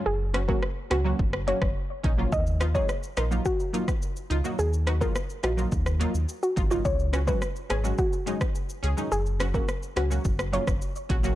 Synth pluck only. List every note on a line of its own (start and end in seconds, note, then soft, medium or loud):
0.06 0.17 G#4 loud
0.48 0.60 A#4 medium
0.91 1.02 F#4 medium
1.48 1.59 C#5 medium
2.32 2.43 D#5 loud
2.75 2.86 C#5 medium
3.17 3.28 A#4 medium
3.46 3.86 F#4 loud
4.59 4.70 G#4 loud
5.01 5.12 A#4 medium
5.44 5.55 F#4 medium
6.43 6.54 F#4 medium
6.71 6.82 F4 medium
6.85 6.96 C#5 medium
7.28 7.39 B4 medium
7.70 7.81 G#4 medium
7.99 8.38 F#4 medium
9.12 9.23 G#4 loud
9.54 9.65 A#4 medium
9.97 10.08 F#4 medium
10.53 10.64 C#5 medium